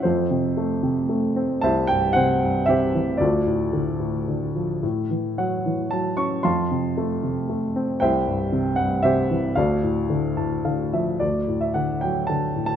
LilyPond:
<<
  \new Staff \with { instrumentName = "Grand piano" } { \time 3/4 \key d \lydian \tempo 4 = 114 << { c''4 r2 | a''8 g''8 fis''4 e''4 | d''2 r4 | r4 fis''4 a''8 cis'''8 |
c'''4 r2 | g''4. fis''8 e''4 | f''2~ f''8 r8 | \key d \major d''8. e''16 fis''8 g''8 a''8. a''16 | } \\ { <f' a'>4. r4. | <c'' e''>4 c''4 <g' c''>4 | <f' a'>2 r4 | r4 cis''4. r8 |
<f'' a''>4. r4. | <c'' e''>4. r8 <g' c''>4 | <a' d''>2~ <a' d''>8 r8 | r2. | } >> }
  \new Staff \with { instrumentName = "Grand piano" } { \clef bass \time 3/4 \key d \lydian f,8 c8 a8 c8 a8 c'8 | c,8 g,8 c8 g,8 c8 e8 | d,8 a,8 d8 a,8 d8 f8 | a,8 e8 fis8 e8 fis8 cis'8 |
f,8 c8 a8 c8 a8 c'8 | c,8 g,8 c8 g,8 c8 e8 | d,8 a,8 d8 <a, a''>8 <d f''>8 <f e''>8 | \key d \major d,8 a,8 d8 fis8 d8 a,8 | }
>>